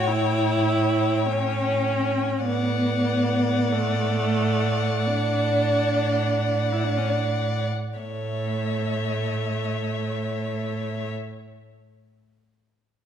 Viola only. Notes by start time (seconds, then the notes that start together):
0.07 E4
1.26 C#4
2.46 B3
3.71 A3
5.07 D4
6.72 E4
6.84 D4
6.97 C#4
7.09 D4
7.98 A3